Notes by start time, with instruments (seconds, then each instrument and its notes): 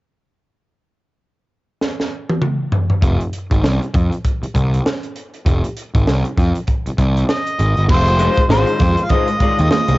1.81 snare
2.00 snare
2.29 high tom
2.42 mid tom
2.72 floor tom
2.90 floor tom
3.02 picked electric bass F1, kick, closed hi-hat
3.21 closed hi-hat
3.33 closed hi-hat
3.51 picked electric bass G#1, kick, closed hi-hat
3.63 picked electric bass C2, snare
3.82 closed hi-hat
3.94 picked electric bass F2, kick, closed hi-hat
4.12 closed hi-hat
4.25 kick, closed hi-hat
4.43 muted picked electric bass stroke, closed hi-hat
4.55 picked electric bass C2, kick, closed hi-hat
4.74 closed hi-hat
4.86 snare
5.03 closed hi-hat
5.16 closed hi-hat
5.34 closed hi-hat
5.46 picked electric bass F1, kick, closed hi-hat
5.64 closed hi-hat
5.77 closed hi-hat
5.95 picked electric bass G#1, kick, closed hi-hat
6.07 picked electric bass C2, snare
6.25 closed hi-hat
6.37 picked electric bass F2, kick, snare, closed hi-hat
6.55 closed hi-hat
6.67 kick, closed hi-hat
6.86 muted picked electric bass stroke, closed hi-hat
6.98 picked electric bass C2, kick, closed hi-hat
7.17 closed hi-hat
7.28 harmonica D#5, snare
7.46 closed hi-hat
7.59 picked electric bass G#1, closed hi-hat
7.77 picked electric bass G1, closed hi-hat
7.88 picked electric bass F1, string section D#3 G#3 F4, harmonica C5, kick, crash, muted conga
8.08 closed hi-hat
8.19 clean electric guitar G#3 D#4 F4 C5, closed hi-hat
8.38 kick, closed hi-hat
8.49 picked electric bass G#1, clean electric guitar G#3 D#4 F4 C5, harmonica C5, snare, high conga
8.67 closed hi-hat
8.80 picked electric bass F2, muted clean electric guitar stroke, kick, snare, closed hi-hat, muted conga, low conga
8.97 muted clean electric guitar stroke, closed hi-hat
9.05 harmonica F5
9.09 clean electric guitar G#3 D#4 F4 C5, harmonica D#5, kick, closed hi-hat, muted conga, low conga
9.28 muted clean electric guitar stroke, closed hi-hat
9.40 clean electric guitar G#3 D#4 F4 D5, muted picked electric bass stroke, kick, closed hi-hat
9.59 picked electric bass D#2, muted clean electric guitar stroke, closed hi-hat
9.71 harmonica D#5, muted clean electric guitar stroke, muted picked electric bass stroke, snare, high conga
9.88 picked electric bass C2, muted clean electric guitar stroke, closed hi-hat, high conga